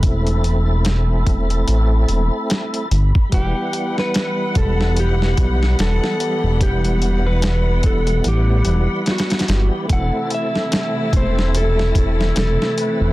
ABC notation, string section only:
X:1
M:4/4
L:1/8
Q:"Swing 16ths" 1/4=73
K:Em
V:1 name="String section" clef=bass
z8 | [E,G,B,f]8- | [E,G,B,f]8 | [C,E,A,E]8 |]